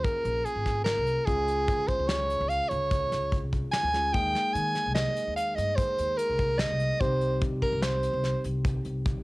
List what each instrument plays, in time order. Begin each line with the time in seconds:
Already playing: tine electric piano A#3 C#4 F4 G#4
0.04 soprano saxophone A#4, kick, closed hi-hat
0.25 upright bass A#1, closed hi-hat
0.45 soprano saxophone G#4, closed hi-hat
0.56 upright bass G#1
0.66 kick, snare, closed hi-hat
0.84 soprano saxophone A#4, snare, closed hi-hat
0.97 upright bass C2
1.07 closed hi-hat
1.25 upright bass C#2, tine electric piano G#3 C#4 F4 G#4, soprano saxophone G#4, kick, closed hi-hat
1.48 closed hi-hat
1.68 upright bass C#3, kick, closed hi-hat
1.88 soprano saxophone C5, kick, closed hi-hat
1.99 upright bass C#2
2.08 soprano saxophone C#5, snare, closed hi-hat
2.30 closed hi-hat
2.40 upright bass C#2
2.49 soprano saxophone F5, closed hi-hat
2.69 upright bass C#2, soprano saxophone C#5, closed hi-hat
2.91 kick, snare, closed hi-hat
3.12 upright bass C#2, snare, closed hi-hat
3.32 kick, closed hi-hat
3.43 upright bass C2
3.53 kick, closed hi-hat
3.72 soprano saxophone G#5, snare, closed hi-hat
3.83 upright bass D2
3.93 tine electric piano G#3 C#4 F4 G#4, snare, closed hi-hat
4.13 upright bass D#2, tine electric piano G#3 A#3 D#4 G#4, soprano saxophone G5, kick, closed hi-hat
4.35 snare, closed hi-hat
4.53 upright bass D#3, soprano saxophone G#5, closed hi-hat
4.75 snare, closed hi-hat
4.86 upright bass C2
4.95 soprano saxophone D#5, snare, closed hi-hat
5.16 closed hi-hat
5.27 upright bass D#2
5.36 soprano saxophone F5, closed hi-hat
5.55 upright bass G2, soprano saxophone D#5, closed hi-hat
5.76 soprano saxophone C5, kick, closed hi-hat
5.98 upright bass D#2, closed hi-hat
6.18 soprano saxophone A#4, closed hi-hat
6.30 upright bass C2
6.39 kick, closed hi-hat
6.59 soprano saxophone D#5, snare, closed hi-hat
6.71 upright bass C2
6.80 closed hi-hat
7.00 upright bass C2, tine electric piano G3 C4 D#4 G4, soprano saxophone C5, kick, closed hi-hat
7.21 closed hi-hat
7.41 upright bass C3, kick, closed hi-hat
7.62 soprano saxophone A#4, kick, closed hi-hat
7.72 upright bass C2
7.82 soprano saxophone C5, snare, closed hi-hat
8.03 closed hi-hat
8.13 upright bass C2
8.24 snare, closed hi-hat
8.44 upright bass C2, closed hi-hat
8.65 kick, closed hi-hat
8.85 upright bass C2, closed hi-hat
9.05 kick, closed hi-hat
9.16 upright bass A#1